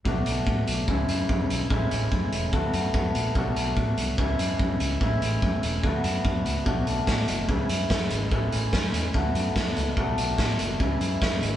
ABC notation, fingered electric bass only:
X:1
M:4/4
L:1/8
Q:1/4=145
K:Bdor
V:1 name="Fingered electric bass" clef=bass
B,,, B,,, A,, B,,, C,, F,, F,, B,,, | A,,, A,,, F,, E,,, D,, F,, F,, _B,,, | B,,, B,,, A,, =C,, ^C,, F,, F,, C,, | A,,, A,,, F,, E,,, D,, F,, F,, C,, |
B,,, B,,, A,, F,,, C,, F,, F,, G,,, | A,,, A,,, F,, E,, D,, F,, F,, C,, | B,,, B,,, A,, F,,, C,, F,, F,, G,,, |]